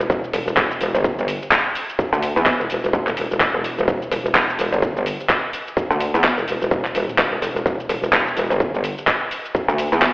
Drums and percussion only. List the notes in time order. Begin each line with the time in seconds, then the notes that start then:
0.01 shaker
0.10 kick, shaker
0.24 shaker
0.33 open hi-hat, shaker
0.48 shaker
0.57 kick, clap, shaker
0.71 shaker
0.81 open hi-hat, shaker
0.95 shaker
1.04 kick, shaker
1.19 shaker
1.28 open hi-hat, shaker
1.42 shaker
1.52 kick, clap, shaker
1.75 open hi-hat, shaker
1.90 shaker
1.99 kick, shaker
2.13 shaker
2.23 open hi-hat, shaker
2.37 shaker
2.46 kick, clap, shaker
2.60 shaker
2.70 open hi-hat, shaker
2.84 shaker
2.93 kick, shaker
3.07 clap, shaker
3.17 open hi-hat, shaker
3.31 shaker
3.41 kick, clap, shaker
3.64 open hi-hat, shaker
3.79 shaker
3.88 kick, shaker
4.02 shaker
4.12 open hi-hat, shaker
4.26 shaker
4.35 kick, clap, shaker
4.49 shaker
4.59 open hi-hat, shaker
4.73 shaker
4.82 kick, shaker
4.97 shaker
5.06 open hi-hat, shaker
5.20 shaker
5.30 kick, clap, shaker
5.53 open hi-hat, shaker
5.67 shaker
5.77 kick, shaker
5.91 shaker
6.00 open hi-hat, shaker
6.15 shaker
6.24 kick, clap, shaker
6.38 shaker
6.48 open hi-hat, shaker
6.62 shaker
6.71 kick, shaker
6.85 clap, shaker
6.95 open hi-hat, shaker
7.09 shaker
7.18 kick, clap, shaker
7.42 open hi-hat, shaker
7.56 shaker
7.66 kick, shaker
7.80 shaker
7.89 open hi-hat, shaker
8.04 shaker
8.13 kick, clap, shaker
8.27 shaker
8.37 open hi-hat, shaker
8.51 shaker
8.60 kick, shaker
8.75 shaker
8.84 open hi-hat, shaker
8.98 shaker
9.07 kick, clap, shaker
9.31 open hi-hat, shaker
9.45 shaker
9.55 kick, shaker
9.69 shaker
9.78 open hi-hat, shaker
9.93 shaker
10.02 kick, clap, shaker